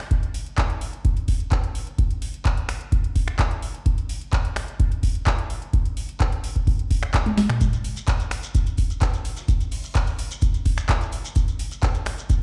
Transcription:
0.11 kick loud
0.11 closed hi-hat medium
0.23 closed hi-hat soft
0.34 open hi-hat loud
0.46 closed hi-hat soft
0.58 kick loud
0.58 clap loud
0.58 closed hi-hat medium
0.70 closed hi-hat soft
0.81 open hi-hat loud
0.93 closed hi-hat soft
1.05 kick loud
1.05 closed hi-hat medium
1.17 closed hi-hat soft
1.28 kick medium
1.28 open hi-hat loud
1.40 closed hi-hat soft
1.52 kick loud
1.52 clap loud
1.52 closed hi-hat medium
1.64 closed hi-hat soft
1.75 open hi-hat loud
1.87 closed hi-hat soft
1.98 kick loud
1.98 closed hi-hat medium
2.11 closed hi-hat soft
2.22 open hi-hat medium
2.34 closed hi-hat soft
2.45 kick loud
2.45 clap loud
2.45 closed hi-hat medium
2.57 closed hi-hat soft
2.69 finger snap medium
2.69 open hi-hat loud
2.81 closed hi-hat soft
2.92 kick loud
2.92 closed hi-hat medium
3.04 closed hi-hat soft
3.16 kick medium
3.16 open hi-hat loud
3.28 finger snap medium
3.28 closed hi-hat soft
3.39 kick loud
3.39 clap loud
3.39 closed hi-hat medium
3.51 closed hi-hat soft
3.62 open hi-hat medium
3.75 closed hi-hat soft
3.86 kick loud
3.86 closed hi-hat medium
3.98 closed hi-hat soft
4.09 open hi-hat medium
4.21 closed hi-hat soft
4.33 kick loud
4.33 clap loud
4.33 closed hi-hat medium
4.45 closed hi-hat soft
4.56 finger snap medium
4.56 open hi-hat medium
4.68 closed hi-hat soft
4.80 kick loud
4.80 closed hi-hat loud
4.92 closed hi-hat soft
5.03 kick medium
5.03 open hi-hat loud
5.15 closed hi-hat soft
5.26 kick loud
5.26 clap loud
5.26 closed hi-hat medium
5.39 closed hi-hat soft
5.50 open hi-hat medium
5.62 closed hi-hat soft
5.73 kick loud
5.73 closed hi-hat medium
5.85 closed hi-hat soft
5.97 open hi-hat medium
6.09 closed hi-hat soft
6.20 kick loud
6.20 clap loud
6.20 closed hi-hat medium
6.32 closed hi-hat soft
6.44 open hi-hat loud
6.56 kick medium
6.56 closed hi-hat soft
6.67 kick loud
6.67 open hi-hat medium
6.79 closed hi-hat soft
6.91 kick medium
6.91 open hi-hat loud
7.03 finger snap medium
7.14 kick loud
7.14 clap loud
7.14 closed hi-hat medium
7.26 closed hi-hat soft
7.26 high tom medium
7.37 snare medium
7.37 open hi-hat medium
7.49 finger snap medium
7.49 closed hi-hat soft
7.49 mid tom medium
7.61 kick loud
7.61 closed hi-hat medium
7.61 shekere medium
7.61 shaker medium
7.73 closed hi-hat soft
7.73 shekere soft
7.84 open hi-hat loud
7.84 shaker medium
7.96 closed hi-hat soft
7.96 shekere medium
8.07 kick loud
8.07 snare loud
8.07 clap loud
8.07 closed hi-hat medium
8.07 shaker medium
8.07 shekere medium
8.20 closed hi-hat soft
8.20 shekere soft
8.31 finger snap medium
8.31 open hi-hat loud
8.31 shaker medium
8.43 closed hi-hat soft
8.43 shekere medium
8.55 kick loud
8.55 closed hi-hat loud
8.55 shaker medium
8.55 shekere medium
8.66 closed hi-hat soft
8.66 shekere soft
8.78 kick medium
8.78 open hi-hat loud
8.78 shaker medium
8.90 closed hi-hat soft
8.90 shekere medium
9.01 kick loud
9.01 snare loud
9.01 clap loud
9.01 closed hi-hat loud
9.01 shaker medium
9.01 shekere medium
9.14 closed hi-hat soft
9.14 shekere soft
9.25 open hi-hat loud
9.25 shaker medium
9.37 snare medium
9.37 closed hi-hat soft
9.37 shekere medium
9.48 kick loud
9.48 closed hi-hat medium
9.48 shaker medium
9.48 shekere medium
9.61 closed hi-hat soft
9.61 shekere soft
9.71 open hi-hat medium
9.71 open hi-hat loud
9.84 closed hi-hat soft
9.84 shekere medium
9.95 kick loud
9.95 snare loud
9.95 clap loud
9.95 closed hi-hat medium
9.95 shaker medium
9.95 shekere medium
10.07 closed hi-hat soft
10.07 shekere soft
10.19 open hi-hat loud
10.19 shaker medium
10.31 closed hi-hat soft
10.31 shekere medium
10.42 kick loud
10.42 closed hi-hat medium
10.42 shekere medium
10.42 shaker medium
10.54 closed hi-hat soft
10.54 shekere soft
10.65 kick medium
10.65 open hi-hat loud
10.65 shaker medium
10.77 finger snap medium
10.77 closed hi-hat soft
10.77 shekere medium
10.89 kick loud
10.89 snare loud
10.89 clap loud
10.89 closed hi-hat medium
10.89 shaker medium
10.89 shekere medium
11.01 closed hi-hat soft
11.01 shekere soft
11.12 open hi-hat loud
11.12 shaker medium
11.25 closed hi-hat soft
11.25 shekere medium
11.35 kick loud
11.35 closed hi-hat medium
11.35 shaker medium
11.35 shekere medium
11.48 closed hi-hat soft
11.48 shekere soft
11.59 open hi-hat loud
11.59 shaker medium
11.71 closed hi-hat soft
11.71 shekere medium
11.82 kick loud
11.82 snare loud
11.82 clap loud
11.82 closed hi-hat medium
11.82 shekere medium
11.82 shaker medium
11.94 closed hi-hat soft
11.94 shekere soft
12.06 finger snap medium
12.06 open hi-hat loud
12.06 shaker medium
12.18 closed hi-hat soft
12.18 shekere medium
12.29 kick loud
12.29 closed hi-hat loud
12.29 shaker medium
12.29 shekere medium

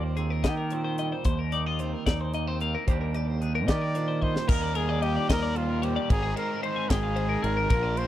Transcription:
0.00 0.45 D#2 medium
0.00 1.26 D#2 medium
0.00 0.18 D#3 medium
0.00 1.01 G3 medium
0.00 0.18 C4 soft
0.00 0.45 F4 medium
0.00 0.17 C5 medium
0.17 1.80 D#3 medium
0.17 0.72 C4 medium
0.17 0.30 G#4 medium
0.17 closed hi-hat soft
0.30 0.44 A#4 medium
0.44 1.12 D#3 medium
0.44 1.52 G4 medium
0.44 0.57 D#5 medium
0.44 kick medium
0.44 snare loud
0.44 closed hi-hat medium
0.57 0.72 A#4 medium
0.70 1.26 A#2 soft
0.70 1.23 C4 medium
0.70 0.83 C5 medium
0.70 closed hi-hat medium
0.85 0.98 C5 medium
0.98 2.61 G3 medium
0.98 1.12 D#5 medium
0.98 closed hi-hat medium
1.12 1.24 C5 medium
1.24 1.94 D#2 medium
1.24 2.33 D#2 medium
1.24 1.39 C5 medium
1.24 kick medium
1.24 closed hi-hat medium
1.39 1.52 A#4 medium
1.52 1.66 D#4 medium
1.52 1.66 D5 medium
1.52 closed hi-hat soft
1.66 2.07 F4 soft
1.66 1.80 D#5 medium
1.79 2.87 D#3 medium
1.79 2.34 C4 soft
1.79 1.93 C5 medium
1.79 closed hi-hat soft
1.93 2.06 A#4 medium
2.06 2.75 D#2 medium
2.06 2.89 D#4 medium
2.06 2.20 D5 medium
2.06 kick medium
2.06 snare loud
2.06 closed hi-hat medium
2.21 2.34 C5 medium
2.34 2.86 D#2 medium
2.34 2.47 A#3 medium
2.34 2.48 D#5 medium
2.34 closed hi-hat medium
2.47 2.88 C4 soft
2.47 2.61 C5 medium
2.61 2.88 A#3 medium
2.61 2.75 F5 medium
2.61 closed hi-hat medium
2.75 2.88 A#4 medium
2.87 6.10 D#2 medium
2.87 3.69 D#2 medium
2.87 3.40 D#3 medium
2.87 4.21 G3 medium
2.87 3.40 D4 medium
2.87 3.14 G4 medium
2.87 3.00 C5 medium
2.87 kick medium
2.87 closed hi-hat medium
3.01 3.14 A#4 medium
3.14 3.67 G4 medium
3.14 3.27 D5 medium
3.14 closed hi-hat soft
3.27 3.41 C5 medium
3.41 6.10 D#3 medium
3.41 3.95 D4 soft
3.41 3.55 G#4 medium
3.41 closed hi-hat soft
3.55 3.69 A#4 medium
3.68 4.36 D#3 medium
3.68 4.46 G4 medium
3.68 4.24 D5 loud
3.68 3.82 D#5 medium
3.68 kick medium
3.68 snare loud
3.68 closed hi-hat medium
3.81 3.95 A#4 medium
3.95 4.49 A#2 medium
3.95 4.46 D4 medium
3.95 4.07 C5 medium
3.95 closed hi-hat medium
4.08 4.22 C5 medium
4.22 6.10 G3 medium
4.22 4.50 C5 loud
4.22 4.35 D#5 medium
4.22 kick medium
4.35 4.48 C5 medium
4.35 snare medium
4.49 5.17 D#2 loud
4.49 6.08 D#2 loud
4.49 6.09 A#2 medium
4.49 6.09 D#3 loud
4.49 6.10 G3 loud
4.49 6.10 A#3 loud
4.49 6.10 D#4 loud
4.49 4.62 A#4 medium
4.49 4.78 A#4 loud
4.49 kick loud
4.49 crash loud
4.62 4.75 D5 medium
4.75 5.04 G#4 loud
4.75 4.89 A#4 medium
4.75 ride medium
4.89 5.02 D5 medium
5.02 5.29 G4 loud
5.02 5.16 D#5 medium
5.02 ride medium
5.16 5.29 D5 medium
5.29 5.97 D#2 loud
5.29 5.58 A#4 loud
5.29 5.42 D#5 medium
5.29 kick medium
5.29 snare loud
5.29 ride loud
5.42 5.56 D5 medium
5.56 5.85 F4 loud
5.56 5.69 C5 medium
5.56 ride medium
5.69 5.82 A#4 medium
5.82 6.12 G4 medium
5.82 5.96 C5 medium
5.82 ride medium
5.96 6.10 D5 medium
6.09 6.33 G#1 loud
6.09 7.69 G#2 loud
6.09 7.69 D#3 loud
6.09 7.70 G#3 loud
6.09 7.70 C4 loud
6.09 7.70 D#4 loud
6.09 6.36 G#4 loud
6.09 6.23 A#4 medium
6.09 kick loud
6.09 ride loud
6.23 6.36 G#4 medium
6.36 6.62 A#4 loud
6.36 6.50 C5 medium
6.36 ride medium
6.50 6.63 A#4 medium
6.63 6.77 C5 medium
6.63 6.91 C5 medium
6.63 ride medium
6.76 6.90 G#5 medium
6.90 7.35 G#1 medium
6.90 7.45 G#4 loud
6.90 7.03 G5 medium
6.90 kick medium
6.90 snare loud
6.90 ride loud
7.03 7.17 F5 medium
7.16 7.29 C5 medium
7.16 ride medium
7.29 7.43 A#4 medium
7.43 7.66 G#1 loud
7.43 7.57 G#4 medium
7.43 7.99 A#4 loud
7.43 ride medium
7.57 7.69 A#4 medium
7.70 8.07 A#1 loud
7.70 8.07 A#2 loud
7.70 8.07 F3 loud
7.70 8.07 A#3 loud
7.70 8.07 D4 loud
7.70 7.83 A#4 loud
7.70 kick loud
7.70 ride loud
7.74 8.07 F4 loud
7.83 7.97 D5 medium
7.97 8.07 A#4 medium
7.97 8.07 C5 loud
7.97 ride medium

